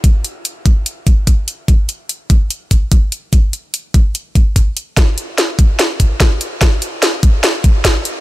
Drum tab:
HH |xxxxxxxx|xxxxxxxx|xxxxxxxx|xxxxxxxx|
SD |--------|--------|--------|o-o-o-o-|
BD |o--o-oo-|o--o-oo-|o--o-oo-|o--o-oo-|

HH |xxxxxxxx|
SD |o-o-o-o-|
BD |o--o-oo-|